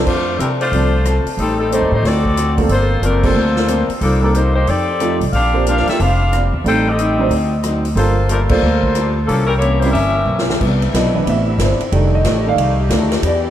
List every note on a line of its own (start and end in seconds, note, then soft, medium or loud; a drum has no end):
0.00 0.37 F3 medium
0.00 0.37 C4 medium
0.00 0.37 D4 medium
0.00 0.38 A4 medium
0.05 0.37 F2 medium
0.05 0.27 F3 soft
0.05 0.37 A3 medium
0.05 0.28 C4 soft
0.05 0.37 D4 medium
0.05 0.29 D4 medium
0.05 0.37 F4 medium
0.05 0.29 A4 medium
0.05 0.37 C5 medium
0.05 kick medium
0.05 crash medium
0.39 0.70 C3 medium
0.39 0.61 F3 medium
0.39 0.49 G3 medium
0.39 0.49 C4 medium
0.39 0.62 C4 medium
0.39 0.62 D4 medium
0.39 0.48 E4 medium
0.39 0.62 A4 medium
0.39 0.49 A#4 medium
0.39 closed hi-hat medium
0.60 1.22 A3 medium
0.60 1.22 D4 medium
0.60 1.22 F4 medium
0.60 1.22 C5 medium
0.60 open hi-hat soft
0.71 1.22 C2 medium
0.71 0.91 F3 medium
0.71 0.94 F3 soft
0.71 0.91 A3 soft
0.71 0.91 C4 soft
0.71 0.95 C4 soft
0.71 0.91 D4 soft
0.71 0.95 D4 soft
0.71 0.92 A4 medium
0.71 0.96 A4 medium
0.71 open hi-hat soft
1.05 1.27 F3 medium
1.05 1.28 C4 medium
1.05 1.28 D4 medium
1.05 1.29 A4 medium
1.05 cross-stick medium
1.05 closed hi-hat soft
1.25 muted upright bass stroke soft
1.25 open hi-hat soft
1.37 1.78 A1 medium
1.37 1.60 A2 soft
1.37 1.58 G3 medium
1.37 1.61 G3 soft
1.37 1.58 C4 medium
1.37 1.62 C4 soft
1.37 1.58 D#4 medium
1.37 1.58 A4 medium
1.37 open hi-hat soft
1.42 1.62 D#4 medium
1.60 1.71 G3 medium
1.60 1.71 C4 medium
1.60 1.71 D#4 medium
1.60 1.71 A4 medium
1.70 1.93 A2 medium
1.70 1.89 G3 medium
1.70 1.94 G3 medium
1.70 1.90 A3 medium
1.70 1.91 A3 medium
1.70 1.90 C4 medium
1.70 1.94 C4 medium
1.70 1.90 D#4 medium
1.70 1.94 D#4 medium
1.70 1.91 D#4 medium
1.70 1.91 G4 medium
1.70 1.91 A4 medium
1.70 1.91 C5 medium
1.70 closed hi-hat medium
1.81 1.91 D#2 medium
1.91 2.02 A2 medium
1.91 2.04 A3 medium
1.91 2.04 D#4 medium
1.91 2.04 G4 medium
1.91 2.04 C5 medium
2.02 2.66 D2 medium
2.02 2.26 D3 soft
2.02 2.26 A3 soft
2.02 2.27 C4 medium
2.02 2.59 C4 medium
2.02 2.59 F#4 medium
2.02 2.59 A4 medium
2.02 2.59 D5 medium
2.02 snare soft
2.02 open hi-hat soft
2.07 2.28 F#4 medium
2.25 kick medium
2.37 2.59 D3 medium
2.37 2.59 A3 medium
2.37 2.60 C4 medium
2.37 2.60 F#4 medium
2.37 cross-stick medium
2.37 closed hi-hat medium
2.57 2.68 G3 medium
2.57 2.69 A#3 medium
2.57 2.69 C4 medium
2.57 2.69 F4 medium
2.57 2.69 A4 medium
2.57 kick medium
2.57 open hi-hat soft
2.69 3.00 G1 medium
2.69 2.91 G2 soft
2.69 2.92 F3 soft
2.69 2.93 A#3 medium
2.69 3.01 A#3 medium
2.69 2.93 C4 medium
2.69 3.01 F4 medium
2.69 3.01 A4 medium
2.69 3.01 C5 loud
2.69 open hi-hat soft
3.02 3.33 F#1 medium
3.02 3.25 G2 medium
3.02 3.22 F3 medium
3.02 3.25 F3 medium
3.02 3.23 A3 medium
3.02 3.25 A#3 medium
3.02 3.26 C4 medium
3.02 3.23 D4 medium
3.02 3.23 A#4 medium
3.02 closed hi-hat medium
3.23 3.34 G3 medium
3.23 3.35 A#3 medium
3.23 3.91 A#3 medium
3.23 3.35 C4 medium
3.23 3.35 F4 medium
3.23 3.91 F4 medium
3.23 3.35 A4 medium
3.23 3.91 A4 medium
3.23 3.91 C5 medium
3.23 kick medium
3.23 crash medium
3.34 3.85 D2 medium
3.34 3.57 G2 soft
3.34 3.58 F3 medium
3.34 3.59 A#3 medium
3.34 3.59 C4 medium
3.56 snare medium
3.66 3.90 G2 medium
3.66 3.90 F3 medium
3.66 3.91 A#3 medium
3.66 3.91 C4 medium
3.66 cross-stick medium
3.66 closed hi-hat medium
3.89 muted upright bass stroke soft
3.89 open hi-hat soft
4.01 4.64 C2 medium
4.01 4.23 C3 soft
4.01 4.22 F3 medium
4.01 4.24 G3 medium
4.01 4.24 A#3 soft
4.01 4.22 A#3 medium
4.01 4.22 D4 medium
4.01 4.25 D#4 medium
4.01 4.22 A4 medium
4.01 open hi-hat soft
4.22 4.34 F3 medium
4.22 4.33 G3 medium
4.22 4.33 A#3 medium
4.22 4.33 C4 medium
4.22 4.35 D4 medium
4.22 4.34 D#4 medium
4.22 4.34 A4 medium
4.22 4.34 A#4 medium
4.33 4.56 C3 medium
4.33 4.57 G3 medium
4.33 4.54 A#3 medium
4.33 4.57 A#3 medium
4.33 4.54 D#4 medium
4.33 4.57 D#4 medium
4.33 4.54 G4 medium
4.33 4.53 C5 medium
4.33 closed hi-hat medium
4.55 4.67 A#3 medium
4.55 4.66 D#4 medium
4.55 4.67 G4 medium
4.55 4.66 C5 medium
4.66 5.18 F2 medium
4.66 4.89 F3 soft
4.66 4.90 A3 soft
4.66 5.22 C4 medium
4.66 4.90 D#4 soft
4.66 5.22 G4 medium
4.66 4.91 G4 medium
4.66 5.22 A4 medium
4.66 5.22 D5 loud
4.66 open hi-hat soft
5.00 5.19 F3 medium
5.00 5.22 F3 medium
5.00 5.19 A3 medium
5.00 5.23 A3 medium
5.00 5.20 C4 medium
5.00 5.23 D#4 medium
5.00 5.20 D#4 medium
5.00 5.20 F4 medium
5.00 5.24 G4 medium
5.00 cross-stick medium
5.00 closed hi-hat medium
5.21 5.32 C2 medium
5.21 open hi-hat soft
5.33 5.83 A#1 medium
5.33 5.56 A#2 soft
5.33 5.56 G3 soft
5.33 5.57 C4 soft
5.33 5.65 D4 medium
5.33 5.64 G4 medium
5.33 5.65 C5 medium
5.33 5.64 F5 loud
5.33 open hi-hat soft
5.37 5.57 D4 medium
5.54 5.97 F3 medium
5.54 5.97 A#3 medium
5.54 5.97 C4 medium
5.54 5.98 D4 medium
5.54 5.98 G4 medium
5.67 5.89 A#2 medium
5.67 5.89 G3 medium
5.67 5.90 C4 medium
5.67 5.87 D4 medium
5.67 5.90 D4 medium
5.67 5.87 G4 medium
5.67 5.87 C5 medium
5.67 5.87 F5 medium
5.67 closed hi-hat medium
5.77 snare soft
5.87 6.00 C4 medium
5.87 6.00 F4 medium
5.87 5.99 A4 medium
5.87 5.99 E5 loud
5.87 muted upright bass stroke soft
5.87 snare soft
5.87 open hi-hat soft
6.00 6.50 F1 medium
6.00 6.22 A#2 soft
6.00 6.22 G3 medium
6.00 6.23 C4 medium
6.00 6.40 D4 medium
6.00 6.23 D4 medium
6.00 6.40 G4 medium
6.00 6.41 C5 medium
6.00 6.40 F5 medium
6.00 open hi-hat soft
6.33 6.55 A#2 medium
6.33 6.56 G3 medium
6.33 6.56 C4 medium
6.33 6.56 D4 medium
6.33 cross-stick medium
6.33 closed hi-hat medium
6.53 6.64 E2 medium
6.64 7.27 A1 medium
6.64 6.88 A2 soft
6.64 6.84 G3 medium
6.64 6.88 G3 soft
6.64 6.83 A3 medium
6.64 6.84 C4 medium
6.64 6.84 D#4 medium
6.64 6.84 A4 medium
6.64 open hi-hat soft
6.68 6.89 C4 soft
6.68 6.87 D#4 medium
6.68 6.90 D#4 medium
6.68 6.86 A4 loud
6.68 6.86 C5 loud
6.68 6.86 G5 loud
6.89 7.54 C4 medium
6.89 7.33 G4 medium
6.89 7.53 A4 medium
6.89 7.54 D#5 loud
6.98 7.20 A2 medium
6.98 7.21 G3 medium
6.98 7.21 C4 medium
6.98 7.21 D#4 medium
6.98 closed hi-hat medium
7.19 7.30 F#3 medium
7.19 7.30 C4 medium
7.19 7.30 D4 medium
7.19 7.30 D#4 medium
7.19 7.31 C5 medium
7.29 7.93 D2 medium
7.29 7.53 D3 medium
7.29 7.54 F#3 medium
7.29 open hi-hat soft
7.33 7.54 C4 medium
7.33 7.55 D#4 medium
7.63 7.86 D3 medium
7.63 7.86 F#3 medium
7.63 7.87 C4 medium
7.63 7.87 D#4 medium
7.63 cross-stick medium
7.63 closed hi-hat medium
7.85 open hi-hat soft
7.95 8.46 G1 medium
7.95 8.15 G3 medium
7.95 8.19 G3 medium
7.95 8.15 A#3 medium
7.95 8.19 A#3 soft
7.95 8.28 A#3 medium
7.95 8.15 D4 medium
7.95 8.28 F4 medium
7.95 8.16 F4 medium
7.95 8.20 F4 medium
7.95 8.28 A4 medium
7.95 8.16 A4 medium
7.95 8.20 A4 medium
7.95 8.28 C5 medium
7.95 open hi-hat soft
8.29 8.39 F3 medium
8.29 8.52 G3 medium
8.29 8.40 A3 medium
8.29 8.52 A#3 medium
8.29 8.39 D4 medium
8.29 8.52 F4 medium
8.29 8.53 A4 medium
8.29 8.40 A#4 medium
8.29 closed hi-hat medium
8.49 8.61 D2 medium
8.49 8.61 G3 medium
8.49 9.12 A#3 medium
8.49 8.61 A#3 medium
8.49 8.61 D4 medium
8.49 9.12 F4 medium
8.49 8.62 F4 medium
8.49 9.12 A4 medium
8.49 8.62 A4 medium
8.49 9.12 C5 loud
8.49 kick loud
8.49 crash medium
8.62 9.25 D2 medium
8.62 8.85 G3 medium
8.62 8.85 A#3 medium
8.62 8.86 F4 medium
8.62 8.86 A4 medium
8.83 kick medium
8.95 9.18 G3 medium
8.95 9.19 A#3 medium
8.95 9.19 F4 medium
8.95 9.19 A4 medium
8.95 cross-stick medium
8.95 closed hi-hat medium
9.26 9.91 C2 medium
9.26 9.51 C3 soft
9.26 9.51 E3 soft
9.26 9.47 F3 medium
9.26 9.47 A#3 medium
9.26 9.45 C#4 medium
9.26 9.47 A4 medium
9.26 open hi-hat soft
9.31 9.52 A#3 soft
9.31 9.52 C#4 medium
9.46 9.53 G3 medium
9.46 9.53 C#4 medium
9.46 9.52 E4 medium
9.46 9.53 A#4 medium
9.58 9.83 C3 medium
9.58 9.78 A#3 medium
9.58 9.78 E4 medium
9.58 9.78 G4 medium
9.58 9.79 C#5 loud
9.58 closed hi-hat medium
9.62 9.84 E3 medium
9.62 9.84 A#3 medium
9.62 9.85 C#4 medium
9.79 9.94 G3 medium
9.79 9.93 A#3 medium
9.79 9.93 E4 medium
9.79 9.90 G4 medium
9.79 9.93 C5 medium
9.79 open hi-hat soft
9.84 9.94 C4 medium
9.84 9.94 C#4 medium
9.84 9.94 E4 medium
9.84 9.95 A#4 medium
9.91 10.25 G1 medium
9.91 10.17 C3 soft
9.91 10.43 C#4 medium
9.91 10.43 G4 medium
9.91 10.43 A#4 medium
9.91 10.43 E5 medium
9.91 open hi-hat soft
9.96 10.17 E3 soft
9.96 10.18 A#3 soft
9.96 10.18 C#4 medium
10.25 10.57 B1 medium
10.25 10.50 C3 medium
10.25 10.50 E3 medium
10.25 10.50 A#3 medium
10.25 10.51 C#4 medium
10.39 snare medium
10.50 snare medium
10.59 10.92 C2 medium
10.59 10.82 C3 soft
10.59 11.90 D3 medium
10.59 10.83 E3 medium
10.59 11.91 G3 medium
10.59 10.83 B3 medium
10.59 11.90 C4 medium
10.59 10.84 D4 medium
10.59 11.91 E4 medium
10.59 kick medium
10.59 crash medium
10.82 ride soft
10.92 11.25 B1 medium
10.92 11.15 C3 medium
10.92 11.16 E3 medium
10.92 11.16 B3 medium
10.92 11.16 D4 medium
10.92 11.26 D#5 medium
10.92 snare medium
10.92 hi-hat pedal medium
10.92 ride medium
11.14 11.34 E3 soft
11.14 11.34 B3 soft
11.14 11.34 D4 soft
11.25 11.58 A1 medium
11.25 11.48 C3 soft
11.25 11.49 E3 soft
11.25 11.49 B3 soft
11.25 11.50 D4 medium
11.25 ride medium
11.30 11.59 E5 medium
11.58 11.78 G1 medium
11.58 11.82 C3 medium
11.58 11.82 E3 medium
11.58 11.82 B3 medium
11.58 11.83 D4 medium
11.58 snare medium
11.58 hi-hat pedal medium
11.58 ride medium
11.63 12.11 C5 soft
11.80 muted upright bass stroke soft
11.80 ride soft
11.92 12.24 F1 medium
11.92 12.15 F2 soft
11.92 12.17 D#3 soft
11.92 12.15 D#3 medium
11.92 12.17 G3 soft
11.92 13.23 A3 medium
11.92 12.17 A3 soft
11.92 12.16 A3 medium
11.92 12.17 D4 medium
11.92 13.23 D#4 medium
11.92 13.50 G4 medium
11.92 ride medium
11.96 12.16 D4 medium
12.15 12.45 D#5 medium
12.24 12.55 A1 medium
12.24 12.47 F2 medium
12.24 12.48 D#3 medium
12.24 12.48 A3 medium
12.24 12.48 D4 medium
12.24 snare medium
12.24 hi-hat pedal medium
12.24 ride medium
12.47 12.57 D#3 soft
12.47 12.58 G3 soft
12.47 12.58 A3 soft
12.47 12.58 D4 soft
12.47 12.89 F5 medium
12.56 12.89 C2 medium
12.56 12.80 F2 medium
12.56 12.81 D#3 soft
12.56 ride medium
12.60 12.81 A3 medium
12.60 12.82 D4 medium
12.89 13.21 D2 medium
12.89 13.13 F2 medium
12.89 13.13 D#3 medium
12.89 13.14 A3 medium
12.89 13.14 D4 medium
12.89 snare medium
12.89 hi-hat pedal medium
12.89 ride medium
13.12 snare medium
13.12 ride medium
13.22 13.50 E2 medium
13.22 13.46 E3 soft
13.22 13.50 E3 medium
13.22 13.46 B3 medium
13.22 13.50 B3 medium
13.22 13.47 D4 medium
13.22 13.47 G4 medium
13.22 ride medium
13.27 13.50 D5 medium